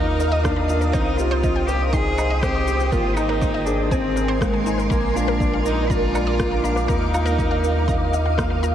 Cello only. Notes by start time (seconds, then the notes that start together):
Already playing: D#4
0.43 D4
0.93 D#4
1.17 F4
1.67 G4
1.87 A#4
1.93 G#4
2.42 G4
2.91 F4
3.15 D#4
3.65 D4
3.90 C4
4.40 G#3
4.91 A#3
5.15 D4
5.65 D#4
5.89 F4
6.64 D4
6.88 D#4